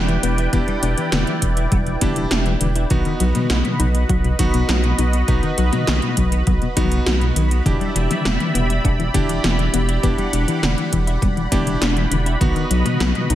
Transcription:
Already playing: E1 E3 D4 E4 G4 B4 D5 G5
0.09 E3, closed hi-hat
0.23 E1 E3 B3, closed hi-hat
0.38 E4, closed hi-hat
0.53 E1 E3 B3 D4 E4 G4, kick, closed hi-hat
0.68 G3, closed hi-hat
0.82 E1 B3 D4, closed hi-hat
0.97 E3, closed hi-hat
1.12 E1 D3 B3, snare, closed hi-hat
1.27 E3, closed hi-hat
1.42 E1 E3, kick, closed hi-hat
1.57 E4, closed hi-hat
1.72 E1 G3 B3, kick, closed hi-hat
1.87 E3, closed hi-hat
2.01 E1 B3 D4 E4 G4, kick, closed hi-hat, mid tom
2.16 E3, closed hi-hat
2.31 E1 B3 D4, snare, closed hi-hat
2.46 E3, closed hi-hat
2.61 E1 D3 E3, closed hi-hat
2.75 E4, closed hi-hat
2.90 B1 B2 D#3 B3 D#4 F#4 B4 D#5 B5, kick, closed hi-hat
3.05 D#3, closed hi-hat
3.20 B1 F#3, closed hi-hat
3.35 B2, closed hi-hat, mid tom
3.50 B1 F#3 B3, snare, closed hi-hat
3.65 B2, closed hi-hat, mid tom
3.79 B1 B2 D#4, closed hi-hat
3.95 B3, closed hi-hat
4.09 B1 F#3 F#4, kick, closed hi-hat
4.24 B2, closed hi-hat
4.39 B1 D#3 F#3 B3 D#4 F#4, kick, closed hi-hat
4.54 B2, closed hi-hat
4.69 B1 F#3, snare, closed hi-hat
4.84 B2, closed hi-hat
4.98 B1 B2 D#4, closed hi-hat
5.13 B3, closed hi-hat
5.28 B1 B2 B3 D#4 F#4, kick, closed hi-hat
5.43 D#3, closed hi-hat
5.58 B1 F#3 F#4, closed hi-hat
5.73 B2, closed hi-hat, mid tom
5.87 B1 D#3 F#3, snare, closed hi-hat
6.02 B2, closed hi-hat
6.17 B1 B2 F#3, kick, closed hi-hat
6.32 B3, closed hi-hat
6.47 B1 F#3 B3, kick, closed hi-hat
6.62 B2, closed hi-hat
6.76 B1 F#3 B3 D#4 F#4, kick, closed hi-hat, mid tom
6.92 B3, closed hi-hat
7.06 B1 D#3 F#4, snare, closed hi-hat
7.21 B2, closed hi-hat
7.36 B1 D#3 F#3, closed hi-hat
7.51 B3, closed hi-hat
7.66 E1 D3 E3 D4 E4 G4 D5 E5, kick, closed hi-hat
7.81 G3, closed hi-hat
7.95 E1 E3 B3, closed hi-hat
8.10 E3, closed hi-hat, mid tom
8.25 E1 G3 B3, snare, closed hi-hat
8.40 E3, closed hi-hat, mid tom
8.55 E1 E3 B3, closed hi-hat
8.70 E4, closed hi-hat
8.84 E1 B3 D4, kick, closed hi-hat
8.99 E3, closed hi-hat
9.14 E1 D3 B3 D4 E4 G4, kick, closed hi-hat
9.29 E3, closed hi-hat
9.44 E1 E3 B3, snare, closed hi-hat
9.59 E3, closed hi-hat
9.73 E1 E3 B3, closed hi-hat
9.89 E4, closed hi-hat
10.03 E1 E3 B3 D4 E4 G4 F#5, kick, closed hi-hat
10.18 G3, closed hi-hat
10.33 E1 B3 D4, closed hi-hat
10.48 E3, closed hi-hat
10.62 E1 D3 B3, snare, closed hi-hat
10.77 E3, closed hi-hat
10.92 E1 E3, kick, closed hi-hat
11.07 E4, closed hi-hat
11.22 E1 G3 B3, kick, closed hi-hat
11.37 E3, closed hi-hat
11.52 E1 B3 D4 E4 G4, kick, closed hi-hat, mid tom
11.66 E3, closed hi-hat
11.81 E1 B3 D4, snare, closed hi-hat
11.96 E3, closed hi-hat
12.11 E1 D3 E3, closed hi-hat
12.26 E4, closed hi-hat
12.41 B1 B2 D#3 B3 D#4 F#4 B4 D#5, kick, closed hi-hat
12.55 D#3, closed hi-hat
12.70 B1 F#3, closed hi-hat
12.85 B2, closed hi-hat, mid tom
13.00 B1 F#3 B3, snare, closed hi-hat
13.15 B2, closed hi-hat, mid tom
13.30 B1 B2 D#4, closed hi-hat

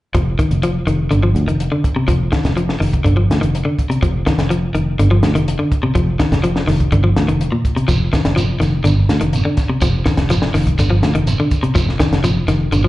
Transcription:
0.14 F1 F3, kick, closed hi-hat
0.39 D#3, kick, closed hi-hat
0.51 F1, closed hi-hat
0.63 F3, closed hi-hat
0.87 F1 D#3, closed hi-hat
1.11 G1 D3, closed hi-hat
1.23 F3
1.35 D2, closed hi-hat
1.47 F1 D#3, closed hi-hat
1.60 closed hi-hat
1.72 D3
1.84 kick, closed hi-hat
1.96 C3, muted fingered electric bass stroke
2.08 F1 F3, kick, closed hi-hat
2.32 D#3, kick, snare, closed hi-hat
2.45 F1, kick, snare, closed hi-hat
2.57 F3, closed hi-hat
2.69 snare
2.80 F1 D#3, open hi-hat
2.93 kick, closed hi-hat
3.04 G1 D3, kick, closed hi-hat
3.17 F3
3.30 D2, snare, closed hi-hat
3.41 F1 D#3, closed hi-hat
3.55 closed hi-hat
3.65 D3
3.79 kick, closed hi-hat
3.89 C3, muted fingered electric bass stroke, closed hi-hat
4.02 F1 F3, kick, closed hi-hat
4.26 D#3, kick, snare, closed hi-hat
4.38 F1, snare, closed hi-hat
4.50 F3, closed hi-hat
4.75 F1 D#3, closed hi-hat
4.99 G1 D3, closed hi-hat
5.11 F3
5.23 D2, snare, closed hi-hat
5.35 F1 D#3, closed hi-hat
5.48 closed hi-hat
5.59 D3
5.72 kick, closed hi-hat
5.83 C3, muted fingered electric bass stroke
5.95 F1 F3, kick, closed hi-hat
6.20 D#3, kick, snare, closed hi-hat
6.32 F1, kick, snare, closed hi-hat
6.44 F3, closed hi-hat
6.56 snare
6.67 F1 D#3, snare, open hi-hat
6.80 kick, closed hi-hat
6.92 G1 D3, kick, closed hi-hat
7.04 F3
7.16 D2, snare, closed hi-hat
7.28 F1 D#3, closed hi-hat
7.41 closed hi-hat
7.52 A#2
7.65 kick, closed hi-hat
7.76 C3, muted fingered electric bass stroke, closed hi-hat
7.88 F1 F3, kick, closed hi-hat, shekere
8.13 D#3, kick, snare, closed hi-hat, shekere
8.25 F1, snare, closed hi-hat
8.36 F3, closed hi-hat, shekere
8.60 F1 D#3, snare, closed hi-hat, shekere
8.84 G1 D3, closed hi-hat, shekere
9.09 D2, snare, closed hi-hat, shekere
9.21 F1 D#3, closed hi-hat
9.33 closed hi-hat, shekere
9.45 D3
9.57 kick, snare, closed hi-hat, shekere
9.69 C3, muted fingered electric bass stroke
9.81 F1 F3, kick, closed hi-hat, shekere
10.06 D#3, kick, snare, closed hi-hat, shekere
10.17 F1, kick, snare, closed hi-hat
10.30 F3, snare, closed hi-hat, shekere
10.42 snare
10.54 F1 D#3, snare, open hi-hat, shekere
10.67 kick, closed hi-hat
10.79 G1 D3, kick, closed hi-hat, shekere
10.90 F3
11.02 D2, snare, closed hi-hat, shekere
11.15 F1 D#3, closed hi-hat
11.27 closed hi-hat, shekere
11.40 D3
11.51 kick, closed hi-hat, shekere
11.63 C3, muted fingered electric bass stroke, closed hi-hat
11.75 F1 F3, kick, closed hi-hat, shekere
11.89 snare
12.00 D#3, kick, snare, closed hi-hat, shekere
12.12 F1, snare, closed hi-hat
12.24 F3, closed hi-hat, shekere
12.48 F1 D#3, snare, closed hi-hat, shekere
12.72 G1 D3, closed hi-hat, shekere
12.84 F3

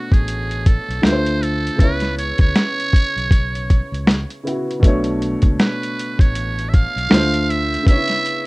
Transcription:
Already playing: B2 A3 D4 F#4 C#5
0.12 A1 G#4, kick, closed hi-hat
0.28 closed hi-hat
0.51 closed hi-hat
0.66 A4, kick, closed hi-hat
0.89 B1, closed hi-hat
1.02 D2 D3 A3 F4 C5, snare
1.06 B4, closed hi-hat
1.12 C5
1.26 closed hi-hat
1.43 A4, closed hi-hat
1.67 closed hi-hat
1.76 C#2 C#3 B3, kick
1.80 E4 B4, closed hi-hat
1.84 C#5
2.00 snare, closed hi-hat
2.18 C#5, closed hi-hat
2.38 D2 C#5, kick, closed hi-hat
2.55 snare, closed hi-hat
2.80 closed hi-hat
2.93 kick, closed hi-hat
3.16 B1, closed hi-hat
3.31 kick, closed hi-hat
3.55 closed hi-hat
3.70 kick, closed hi-hat
3.92 C#2, closed hi-hat
4.07 snare, closed hi-hat
4.30 closed hi-hat
4.44 C#3 B3 E4, closed hi-hat
4.48 F#4
4.71 closed hi-hat
4.80 B1 B2 A3, kick
4.84 D4 C#5, closed hi-hat
5.04 closed hi-hat
5.22 closed hi-hat
5.42 C#2, kick, closed hi-hat
5.59 B4, snare, closed hi-hat
5.83 closed hi-hat
5.99 closed hi-hat
6.19 A1 C#5, kick, closed hi-hat
6.35 closed hi-hat
6.59 closed hi-hat
6.69 E5
6.74 F5, kick, closed hi-hat
6.96 B1, closed hi-hat
7.10 D2 D3 A3 F4, snare
7.14 C5, closed hi-hat
7.34 closed hi-hat
7.50 E5, closed hi-hat
7.74 closed hi-hat
7.83 C#3 B3, kick
7.88 D4 C#5 E5, closed hi-hat
7.95 E4
8.08 snare, closed hi-hat
8.26 closed hi-hat

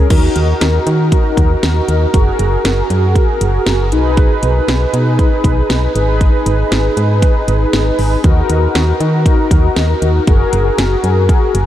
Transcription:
0.10 D#2 D#4 F#4 A#4, kick, closed hi-hat, crash
0.36 D#2, closed hi-hat
0.61 D#2, snare, closed hi-hat
0.87 D#3, closed hi-hat
1.12 kick, closed hi-hat
1.37 D#2, kick, closed hi-hat
1.63 D#2, snare, closed hi-hat
1.88 D#2, closed hi-hat
2.14 F#1 F#4 G#4 A#4, kick, closed hi-hat
2.39 F#1, closed hi-hat
2.65 F#1, snare, closed hi-hat
2.90 F#2, closed hi-hat
3.15 kick, closed hi-hat
3.41 F#1, closed hi-hat
3.66 F#1, snare, closed hi-hat
3.92 B1 D#4 G#4 B4, closed hi-hat
4.17 kick, closed hi-hat
4.43 B1, closed hi-hat
4.68 B1, snare, closed hi-hat
4.93 B2, closed hi-hat
5.19 kick, closed hi-hat
5.44 B1, kick, closed hi-hat
5.70 B1, snare, closed hi-hat
5.95 G#1 D#4 G#4 B4, closed hi-hat
6.21 kick, closed hi-hat
6.46 G#1, closed hi-hat
6.72 G#1, snare, closed hi-hat
6.97 G#2, closed hi-hat
7.22 kick, closed hi-hat
7.48 G#1, closed hi-hat
7.73 G#1, snare, closed hi-hat
7.99 G#1, open hi-hat
8.24 D#2 D#4 F#4 A#4, kick, closed hi-hat
8.50 D#2, closed hi-hat
8.75 D#2, snare, closed hi-hat
9.00 D#3, closed hi-hat
9.26 kick, closed hi-hat
9.51 D#2, kick, closed hi-hat
9.76 D#2, snare, closed hi-hat
10.02 D#2, closed hi-hat
10.27 F#1 F#4 G#4 A#4, kick, closed hi-hat
10.53 F#1, closed hi-hat
10.78 F#1, snare, closed hi-hat
11.04 F#2, closed hi-hat
11.29 kick, closed hi-hat
11.55 F#1, closed hi-hat

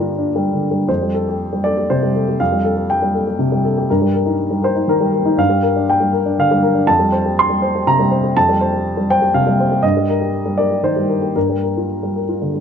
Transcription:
Already playing: G2 D3 G3 D4 A#4
0.00 F4
0.18 D4
0.36 G3
0.53 D3
0.71 G3
0.88 F2 C5
1.02 G3
1.14 A4
1.28 G4
1.53 G3
1.64 A4 D5
1.77 G4
1.90 C3 C5
2.03 G3
2.15 A4
2.29 G4
2.40 F2 F5
2.52 G3
2.65 A4
2.77 G4
2.90 G5
3.02 G3
3.14 A4
3.27 G4
3.39 C3
3.52 G3
3.65 A4
3.77 G4
3.90 G2 A#4
4.02 G3
4.14 A#4
4.26 D#4
4.51 G3
4.62 A#4 C5
4.76 D#4
4.88 D#3 A#4
5.00 G3
5.13 A#4
5.26 D#4
5.37 G2 F5
5.50 G3
5.63 A#4
5.76 D4
5.90 G5
6.00 G3
6.13 A#4
6.26 D4
6.39 D3 F5
6.51 G3
6.63 A#4
6.75 D4
6.87 F2 A5
6.99 G3
7.12 C5
7.26 G4
7.39 C6
7.49 G3
7.62 C5
7.75 G4
7.87 C3 A#5
7.99 G3
8.11 C5
8.24 G4
8.36 F2 A5
8.49 G3
8.61 C5
8.73 G4
8.97 G3
9.10 C5 G5
9.22 G4
9.34 C3 F5
9.47 G3
9.60 C5
9.71 G4
9.83 G2 D#5
9.97 G3
10.10 A#4
10.21 G4
10.46 G3
10.58 A#4 D5
10.71 G4
10.83 D#3 C5
10.97 G3
11.09 A#4
11.22 G4
11.36 G2 A#4
11.50 G3
11.63 A#4
11.77 F4
12.03 G3
12.16 A#4
12.29 F4
12.42 D3
12.54 G3

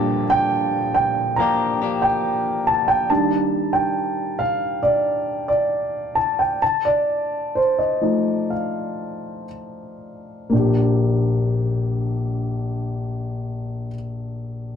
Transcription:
Already playing: A#2 D3 F3 G3 A#3 D4 G4 A5, downlifter
0.30 G5
0.94 G5
1.36 F3 A#3 A#5
1.41 D4 G4
1.82 F3 A#3 D4 G4
2.02 G5
2.67 A5
2.88 G5
3.10 D#3 G3 D4 A5
3.73 G5
4.39 F5
4.83 D5
5.48 D5
6.15 A5
6.39 G5
6.62 A5
6.85 D5
7.55 C5
7.79 D#5
8.01 F3 A3 D#4
8.50 F5
10.50 A#1 A#3 D4
10.56 G4

